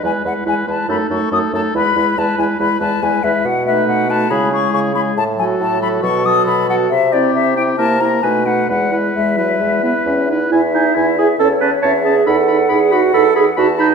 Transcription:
<<
  \new Staff \with { instrumentName = "Flute" } { \time 4/4 \key e \major \tempo 4 = 138 gis''8 fis''8 gis''8 a''8 b''8 cis'''8 dis'''8 a''8 | b''4 a''8 gis''8 b''8 a''8 gis''8 e''8 | fis''8 e''8 fis''8 a''8 b''8 cis'''8 cis'''8 b''8 | a''8 gis''8 a''8 b''8 cis'''8 dis'''8 b''8 fis''8 |
e''8 d''8 e''8 g''8 a''8 bes''8 gis''8 fis''8 | fis''4 e''2~ e''8 r8 | e''2 cis''4 e''4 | fis''2. a''4 | }
  \new Staff \with { instrumentName = "Oboe" } { \time 4/4 \key e \major b'8 b'8 b'8 b'8 a'8 a'8 a'8 a'8 | b'8 b'8 b'8 b'8 b'8 b'8 b'8 b'8 | r8 b'4 b'8 gis'8 gis'4 gis'8 | r8 a'4 a'8 a'8 a'4 a'8 |
r8 g'4 g'8 bes'8 bes'8 b'8 b'8 | b'8 b'4 b'4 b'4 b'8 | gis''8 gis''8 gis''8 gis''8 a''8 a''8 a''8 a''8 | b''8 b''8 b''8 b''8 b''8 b''8 b''8 b''8 | }
  \new Staff \with { instrumentName = "Clarinet" } { \time 4/4 \key e \major e'8 e'8 e'8 e'8 dis'8 dis'8 dis'8 dis'8 | e'8 e'8 e'8 e'8 e'8 e'8 e'8 e'8 | r8 dis'4 dis'8 e'8 e'4 e'8 | r8 fis'4 fis'8 fis'8 fis'4 fis'8 |
r8 e'4 e'8 e'8 e'8 dis'8 dis'8 | e'8 e'4 e'4 e'4 e'8 | e'8 dis'8 e'8 gis'8 a'8 b'8 cis''8 gis'8 | a'4 gis'8 fis'8 a'8 gis'8 fis'8 dis'8 | }
  \new Staff \with { instrumentName = "French horn" } { \time 4/4 \key e \major gis8 gis8 gis8 gis8 a8 a8 a8 a8 | gis8 gis8 gis8 gis8 gis8 gis8 gis8 gis8 | r8 a4 a8 gis8 gis4 gis8 | r8 fis4 fis8 fis8 fis4 fis8 |
r8 c'4 c'8 bes8 bes8 a8 a8 | gis8 gis8 gis8 fis8 gis8 b8 cis'8 dis'8 | e'8 e'8 e'8 e'8 cis'8 cis'8 cis'8 cis'8 | dis'8 dis'8 dis'8 dis'8 dis'8 dis'8 dis'8 dis'8 | }
  \new Staff \with { instrumentName = "Bassoon" } { \clef bass \time 4/4 \key e \major e,8 e,8 e,8 e,8 fis,8 fis,8 fis,8 fis,8 | e,8 e,8 e,8 e,8 e,8 e,8 e,8 e,8 | b,4 b,4 cis4 cis4 | a,4 a,4 b,4 b,4 |
c4 c4 c4 b,4 | e,4 e,4 e,4 e,4 | e,4 e,4 e,4 e,4 | e,4 e,4 e,4 e,4 | }
>>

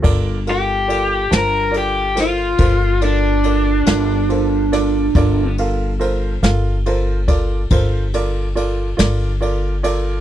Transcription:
<<
  \new Staff \with { instrumentName = "Grand piano" } { \time 12/8 \key g \minor \tempo 4. = 47 <f' a' bes' d''>8 <f' a' bes' f''>8 <f' a' bes' d''>8 <f' bes' c'' a''>8 <f' a' bes' d''>8 <f' a' bes' c''>8 <f' a' bes' c''>8 <f' a' bes' d''>8 <f' a' bes' d''>8 <f' a' bes' d''>8 <f' a' bes' c''>8 <f' a' bes' d''>8 | <f' a' bes' d''>8 <f' a' bes' f''>8 <f' a' bes' c''>8 <f' a' bes' f''>8 <f' a' bes' c''>8 <f' a' bes' d''>8 <f' a' bes' c''>8 <f' a' bes' d''>8 <f' a' bes' d''>8 <f' a' bes' d''>8 <f' a' bes' d''>8 <f' a' bes' d''>8 | }
  \new Staff \with { instrumentName = "Overdriven electric guitar" } { \time 12/8 \key g \minor r8 g'4 bes'8 g'8 f'4 d'2~ d'8~ | d'8 r1 r4. | }
  \new Staff \with { instrumentName = "Upright bass" } { \clef bass \time 12/8 \key g \minor g,,4. g,,4. g,,4. g,,4. | g,,4. g,,4. g,,4. g,,4. | }
  \new DrumStaff \with { instrumentName = "Drums" } \drummode { \time 12/8 <cymc bd>8 cymr8 cymr8 <cymr sn>8 cymr8 <cymr sn>8 <bd cymr>8 cymr8 cymr8 <cymr sn>8 cymr8 <cymr sn>8 | <bd cymr>8 cymr8 cymr8 <cymr sn>8 cymr8 <bd cymr>8 <bd cymr>8 cymr8 cymr8 <cymr sn>8 cymr8 cymr8 | }
>>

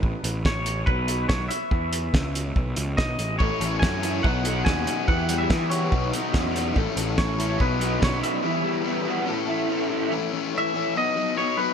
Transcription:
<<
  \new Staff \with { instrumentName = "Clean electric guitar" } { \time 4/4 \key b \mixolydian \tempo 4 = 143 r4 cis''4 b'4 cis''8 e''8~ | e''4. r4. dis''4 | cis''4 gis''4 fis''4 gis''4 | fis''8. e''8. cis''4 r4. |
r4 cis''4 b'4 cis''8 e''8~ | e''4. r2 r8 | r4 e''4 dis''4 cis''8 b'8 | }
  \new Staff \with { instrumentName = "Overdriven electric guitar" } { \time 4/4 \key b \mixolydian r1 | r1 | <e a cis' a'>8 <a cis' a'>8 <e a cis' a'>8 <a cis' a'>8 <fis b dis' fis'>8 <b dis' fis'>8 <fis b dis' fis'>4 | <e b e' g'>8 <b e' g'>8 <e b e' g'>8 <b e' g'>8 <fis b dis' fis'>8 <b dis' fis'>8 <fis b dis' fis'>4 |
<e a cis' a'>8 <a cis' a'>8 <e a cis' a'>8 <a cis' a'>8 <fis b dis'>8 <b dis'>8 <fis b dis'>4 | <g b e'>8 <b e'>8 <g b e'>8 <b e'>8 <cis' e' a'>8 <e' a'>8 <cis' e' a'>4 | <e a cis'>8 <e a cis'>8 <e a cis'>8 <e a cis'>8 <fis b dis'>8 <fis b dis'>8 <fis b dis'>8 <fis b dis'>8 | }
  \new Staff \with { instrumentName = "Overdriven electric guitar" } { \time 4/4 \key b \mixolydian r1 | r1 | a,4 cis'8 e'8 b,8 dis'8 cis'8 dis'8 | e8 g8 b8 fis'8 b,8 dis'8 cis'8 dis'8 |
a,4 cis'8 e'8 b,8 dis'8 cis'8 dis'8 | e8 g8 b8 fis'8 a,8 e'8 cis'8 e'8 | r1 | }
  \new Staff \with { instrumentName = "Picked electric bass" } { \clef bass \time 4/4 \key b \mixolydian a,,16 r16 a,,8 a,,4 b,,4 b,,8 r8 | e,4 cis,4 b,,8 cis,8 b,,8 a,,8 | a,,16 r16 a,,8 fis,4 b,,4 dis,8 r8 | e,4 e4 b,,8 r8 e,4 |
a,,16 r16 a,,8 a,,4 b,,4 b,,8 r8 | r1 | r1 | }
  \new DrumStaff \with { instrumentName = "Drums" } \drummode { \time 4/4 bd8 hh8 <bd sn>8 hh8 bd8 hh8 <bd sn>8 hh8 | bd8 hh8 <bd sn>8 hh8 bd8 hh8 <bd sn>8 hh8 | bd8 hh8 <bd sn>8 hh8 bd8 hh8 <bd sn>8 hh8 | bd8 hh8 <bd sn>8 hh8 bd8 hh8 <bd sn>8 <hh sn>8 |
bd8 hh8 <bd sn>8 hh8 bd8 hh8 <bd sn>8 hh8 | r4 r4 r4 r4 | r4 r4 r4 r4 | }
>>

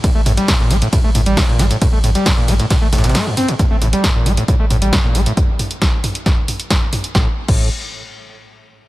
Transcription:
<<
  \new Staff \with { instrumentName = "Acid bass" } { \clef bass \time 4/4 \key a \phrygian \tempo 4 = 135 a,16 a16 a,16 g16 a,16 bes,16 a16 a,16 a,16 a16 a,16 g16 a,16 bes,16 a16 a,16 | a,16 a16 a,16 g16 a,16 bes,16 a16 a,16 a,16 a16 a,16 c16 a16 g,16 c'16 a,16 | a,16 a16 a,16 g16 a,16 bes,16 a16 a,16 a,16 a16 a,16 g16 a,16 bes,16 a16 a,16 | r1 |
a,16 r8 a,8 r2 r8. | }
  \new Staff \with { instrumentName = "Sub bass" } { \clef bass \time 4/4 \key a \phrygian r16 a,,16 a,,16 r8 a,,16 a,,16 r8 a,,16 a,,16 a,,16 r16 a,,16 a,,16 r16 | r16 a,,16 a,,16 r8 a,,16 a,,16 r8 a,,16 a,,16 a,,16 r4 | r16 a,,16 a,,16 r8 a,,16 a,,16 r8 a,,16 a,,16 a,,16 r16 a,,16 a,,16 r16 | r1 |
a,,16 r8 a,,8 r2 r8. | }
  \new DrumStaff \with { instrumentName = "Drums" } \drummode { \time 4/4 <hh bd cymr toml>8 <hh hho sn toml>16 <hh sn>16 <hh bd cymr sn toml>8 <hh hho toml>16 hh16 <hh bd cymr toml>8 <hh hho toml>16 hh16 <hh bd cymr sn toml>16 sn16 <hh hho sn toml>16 hh16 | <hh bd cymr toml>8 <hh hho toml>16 <hh sn>16 <hh bd cymr sn toml>16 sn16 <hh hho toml>16 <hh sn>16 <hh bd cymr sn toml>8 <hh hho sn toml>32 <hh sn>32 <hh sn>32 <hh sn>32 <hh cymr sn toml>16 sn16 <hh hho toml>16 hh16 | <hh bd toml>8 <hh hho sn toml>16 <hh sn>16 <hh bd sn toml>8 <hh hho toml>16 hh16 <hh bd toml>8 <hh hho toml>16 hh16 <hh bd sn toml>16 sn16 <hh hho toml>16 hh16 | <hh bd toml>8 <hho toml>16 hh16 <hh bd sn toml>8 <hho toml>16 hh16 <hh bd sn toml>8 <hho toml>16 hh16 <hh bd sn toml>8 <hho toml>16 hh16 |
<bd sn>8. <cymc bd>16 r4 r4 r4 | }
>>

